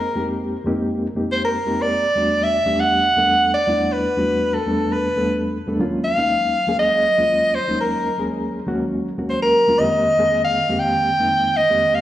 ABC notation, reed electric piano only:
X:1
M:4/4
L:1/16
Q:1/4=120
K:Ebdor
V:1 name="Reed electric piano"
z [F,,A,B,CE=G]3 z [F,,A,B,CEG]3 z [F,,A,B,CEG]3 z [F,,A,B,CEG]3 | z [=E,,=G,=A,=B,=D^F]3 z [E,,G,A,B,D=G]3 z [E,,G,A,B,D=A]3 z [E,,G,A,B,D=E]3 | z [=E,,=G,=A,=B,=D^F]3 z [E,,G,A,B,D=A]3 z [E,,G,A,B,DA]3 z [E,,G,A,B,DA] [_E,,_G,_A,_B,_D=F]2 | z [E,,G,A,B,DE]3 z [E,,G,A,B,DA]3 z [E,,G,A,B,DF]3 z [E,,G,A,B,DE]3 |
z [E,,G,A,B,DA]3 z [E,,G,A,B,DG]3 z [E,,G,A,B,DG]3 z [E,,G,A,B,DF] [F,,E,A,B,C=G]2 | z [F,,E,A,B,CA]3 z [F,,E,A,B,C=G]3 z [F,,E,A,B,CE]3 z [F,,E,A,B,CG]3 |]